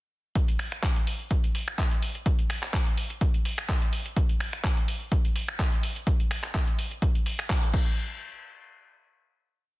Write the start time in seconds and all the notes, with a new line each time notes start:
0.35 kick, closed hi-hat
0.48 closed hi-hat
0.59 finger snap, open hi-hat
0.72 finger snap, closed hi-hat
0.83 kick, clap, closed hi-hat
0.96 closed hi-hat
1.07 open hi-hat
1.31 kick, closed hi-hat
1.44 closed hi-hat
1.55 open hi-hat
1.68 finger snap
1.78 kick, clap, closed hi-hat
1.91 closed hi-hat
2.02 open hi-hat
2.15 closed hi-hat
2.26 kick, closed hi-hat
2.39 closed hi-hat
2.50 finger snap, open hi-hat
2.63 finger snap, clap, closed hi-hat
2.74 kick, clap, closed hi-hat
2.87 closed hi-hat
2.97 open hi-hat
3.10 closed hi-hat
3.21 kick, closed hi-hat
3.34 closed hi-hat
3.45 open hi-hat
3.58 finger snap
3.69 kick, clap, closed hi-hat
3.82 closed hi-hat
3.93 open hi-hat
4.06 closed hi-hat
4.17 kick, closed hi-hat
4.29 closed hi-hat
4.40 finger snap, open hi-hat
4.53 finger snap, closed hi-hat
4.64 kick, clap, closed hi-hat
4.77 closed hi-hat
4.88 open hi-hat
5.12 kick, closed hi-hat
5.25 closed hi-hat
5.36 open hi-hat
5.48 finger snap
5.59 kick, clap, closed hi-hat
5.72 closed hi-hat
5.83 open hi-hat
5.96 closed hi-hat
6.07 kick, closed hi-hat
6.20 closed hi-hat
6.31 finger snap, open hi-hat
6.43 finger snap, clap, closed hi-hat
6.54 kick, clap, closed hi-hat
6.68 closed hi-hat
6.79 open hi-hat
6.91 closed hi-hat
7.02 kick, closed hi-hat
7.15 closed hi-hat
7.26 open hi-hat
7.39 finger snap
7.50 kick, clap, closed hi-hat
7.63 closed hi-hat
7.74 kick, crash